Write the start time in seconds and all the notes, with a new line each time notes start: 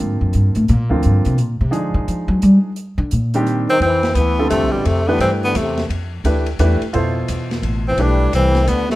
Already playing: D3 F3 A#3 C4 F4
0.00 G#2
0.21 F#2
0.33 G2, closed hi-hat
0.55 A2, closed hi-hat
0.68 A#2, closed hi-hat
0.90 D2 D3 F3 A#3 C4 F4
1.03 G2, closed hi-hat
1.25 C3, closed hi-hat
1.38 A#2, closed hi-hat
1.61 C3
1.71 D3 F3 G#3 D4 D#4 G#4, closed hi-hat
1.94 D#3
2.08 F3, closed hi-hat
2.28 F#3
2.42 G3, closed hi-hat
2.76 closed hi-hat
2.98 D3
3.11 A#2, closed hi-hat
3.34 D#3 G3 C4 D4 G4, closed hi-hat
3.46 closed hi-hat
3.69 D#3 C4
3.80 F2 E3 C4, ride
4.03 snare, ride
4.15 D2 E3 B3, hi-hat pedal, ride
4.39 D3 G3 C4 F4 A4
4.50 E2 C3 A3, hi-hat pedal, ride
4.63 C2
4.71 A1 B2 G3
4.84 F2 C3 A3, ride
5.06 D3 E3 A3 B3 D4 G4 B4
5.19 G2 E3 C4, ride
5.43 D3 B3
5.55 E2 C3 A3, hi-hat pedal, ride
5.77 snare, ride
5.89 F2, ride
6.24 D2 E3 A3 D4 G4 B4, hi-hat pedal, ride
6.46 ride
6.59 E2 E3 A3 D4 G4 B4, hi-hat pedal, ride
6.81 muted upright bass stroke, ride
6.93 F2 B2 E4 F4 A4 C5, ride
7.28 E2, hi-hat pedal, ride
7.51 snare, ride
7.62 A1, ride
7.88 E3 C4
7.97 B1 E3 G3 A3 D4 G4 B4, ride
8.02 D4
8.32 C2 E3 C4, hi-hat pedal, ride
8.55 snare, ride
8.67 D2 D3 B3, hi-hat pedal, ride
8.88 C3 A3, snare